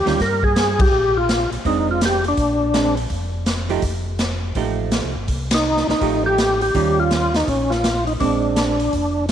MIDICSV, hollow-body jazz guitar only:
0, 0, Header, 1, 2, 480
1, 0, Start_track
1, 0, Tempo, 364078
1, 1216, Time_signature, 4, 2, 24, 8
1, 12284, End_track
2, 0, Start_track
2, 0, Title_t, "Hollow-body jazz guitar"
2, 0, Program_c, 0, 26
2, 71, Note_on_c, 0, 51, 48
2, 79, Note_on_c, 0, 55, 56
2, 88, Note_on_c, 0, 61, 53
2, 96, Note_on_c, 0, 65, 60
2, 233, Note_off_c, 0, 51, 0
2, 237, Note_off_c, 0, 55, 0
2, 242, Note_off_c, 0, 61, 0
2, 246, Note_off_c, 0, 65, 0
2, 2174, Note_on_c, 0, 56, 43
2, 2183, Note_on_c, 0, 60, 47
2, 2190, Note_on_c, 0, 62, 49
2, 2898, Note_off_c, 0, 56, 0
2, 2902, Note_off_c, 0, 60, 0
2, 2906, Note_off_c, 0, 62, 0
2, 3607, Note_on_c, 0, 56, 39
2, 3617, Note_on_c, 0, 60, 39
2, 3626, Note_on_c, 0, 62, 41
2, 3885, Note_off_c, 0, 56, 0
2, 3890, Note_off_c, 0, 60, 0
2, 3895, Note_off_c, 0, 62, 0
2, 4866, Note_on_c, 0, 53, 48
2, 4877, Note_on_c, 0, 57, 51
2, 4882, Note_on_c, 0, 67, 56
2, 4884, Note_on_c, 0, 63, 59
2, 5031, Note_off_c, 0, 53, 0
2, 5036, Note_off_c, 0, 57, 0
2, 5039, Note_off_c, 0, 67, 0
2, 5040, Note_off_c, 0, 63, 0
2, 6013, Note_on_c, 0, 53, 40
2, 6015, Note_on_c, 0, 57, 45
2, 6023, Note_on_c, 0, 63, 46
2, 6023, Note_on_c, 0, 67, 47
2, 6738, Note_off_c, 0, 53, 0
2, 6739, Note_off_c, 0, 57, 0
2, 6743, Note_off_c, 0, 63, 0
2, 6743, Note_off_c, 0, 67, 0
2, 7925, Note_on_c, 0, 53, 50
2, 7933, Note_on_c, 0, 57, 50
2, 7937, Note_on_c, 0, 63, 46
2, 7938, Note_on_c, 0, 67, 46
2, 8654, Note_off_c, 0, 53, 0
2, 8658, Note_off_c, 0, 57, 0
2, 8660, Note_off_c, 0, 63, 0
2, 8661, Note_off_c, 0, 67, 0
2, 8894, Note_on_c, 0, 51, 56
2, 8900, Note_on_c, 0, 55, 54
2, 8904, Note_on_c, 0, 61, 53
2, 8909, Note_on_c, 0, 65, 51
2, 9619, Note_off_c, 0, 51, 0
2, 9622, Note_off_c, 0, 55, 0
2, 9624, Note_off_c, 0, 61, 0
2, 9626, Note_off_c, 0, 65, 0
2, 10811, Note_on_c, 0, 56, 50
2, 10823, Note_on_c, 0, 60, 55
2, 10829, Note_on_c, 0, 62, 47
2, 11538, Note_off_c, 0, 56, 0
2, 11544, Note_off_c, 0, 60, 0
2, 11547, Note_off_c, 0, 62, 0
2, 12284, End_track
0, 0, End_of_file